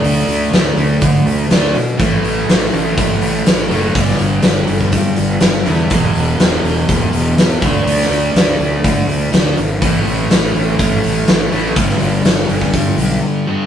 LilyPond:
<<
  \new Staff \with { instrumentName = "Distorted electric guitar" } { \clef bass \time 4/4 \key d \lydian \tempo 4 = 123 <d a d'>2. <d a d'>8 r8 | <a, e a>2.~ <a, e a>8 <a, e a>8 | <g, d g>2.~ <g, d g>8 <g, d g>8 | <e, b, e>2.~ <e, b, e>8 <d a d'>8~ |
<d a d'>2. <d a d'>8 r8 | <a, e a>2.~ <a, e a>8 <a, e a>8 | <g, d g>2.~ <g, d g>8 <g, d g>8 | }
  \new Staff \with { instrumentName = "Fingered electric bass" } { \clef bass \time 4/4 \key d \lydian d,8 d,8 d,8 d,8 d8 d,8 d,8 b,8 | a,,8 a,,8 a,,8 a,,8 a,,8 a,,8 a,,8 fis,,8 | g,,8 g,,8 g,,8 g,,8 g,8 g,,8 g,,8 e,8 | e,,8 e,,8 e,,8 e,,8 e,,8 e,,8 e,8 d,8 |
d,8 d,8 d,8 d,8 d8 d,8 d,8 gis,,8 | a,,8 a,,8 a,,8 a,,8 a,,8 a,,8 a,,8 a,,8 | g,,8 g,,8 g,,8 g,,8 g,8 b,,8 r4 | }
  \new DrumStaff \with { instrumentName = "Drums" } \drummode { \time 4/4 hho8 hho8 <hho sn>8 hho8 <hho bd>8 hho8 <hho sn>8 hho8 | <hho bd>8 hho8 <hho sn>8 hho8 <hho bd>8 hho8 <hho sn>8 hho8 | <hho bd>16 sn16 hho8 <hho sn>8 hho16 bd16 <hho bd>8 hho8 <hho sn>8 hho8 | <hho bd>8 hho8 <hho sn>8 hho8 <hho bd>8 hho8 <hho sn>8 <hho bd>8 |
hho16 sn16 hho8 <hho sn>8 hho8 <hho bd>8 hho8 <hho sn>8 hho8 | <hho bd>8 hho8 <hho sn>8 hho8 <hho bd>8 hho8 <hho sn>8 hho8 | <hho bd>16 sn16 hho8 <hho sn>8 hho16 bd16 <hho bd>8 hho8 r4 | }
>>